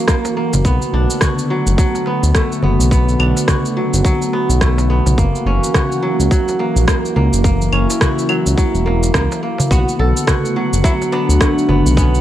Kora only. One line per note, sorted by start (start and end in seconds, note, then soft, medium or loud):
0.00 0.70 F#3 medium
0.00 0.41 C#4 medium
0.00 0.41 F#4 medium
0.08 0.36 A#3 medium
0.37 0.71 A#3 medium
0.65 2.07 B3 medium
0.94 2.62 D4 medium
1.22 2.68 F#4 medium
1.50 1.77 F#3 medium
1.79 3.75 F#3 medium
2.07 2.63 B3 medium
2.35 4.35 A3 medium
2.63 2.91 B3 medium
2.92 4.33 B3 medium
3.20 4.88 D4 medium
3.48 4.95 F#4 medium
3.77 4.04 F#3 medium
4.05 5.23 F#3 loud
4.33 4.89 B3 medium
4.61 5.24 A3 medium
4.90 5.24 B3 medium
5.18 6.59 A#3 medium
5.46 7.20 C#4 medium
5.74 7.20 F#4 medium
6.03 6.30 F#3 medium
6.31 8.28 F#3 medium
6.59 6.87 A#3 medium
6.87 7.16 A#3 medium
7.16 7.44 A#3 medium
7.44 8.85 A#3 medium
7.72 9.46 C#4 medium
8.01 9.48 F#4 medium
8.29 8.56 F#3 medium
8.57 9.76 F#3 medium
8.86 9.14 A#3 medium
9.14 9.42 A#3 medium
9.43 9.77 A#3 medium
9.71 11.12 B3 medium
9.99 11.31 A4 loud
10.28 11.74 F#4 medium
10.56 10.83 F#3 medium
10.84 12.21 F#3 loud
11.12 11.68 B3 medium
11.41 12.21 A3 medium
11.69 11.96 B3 medium
11.97 12.21 B3 medium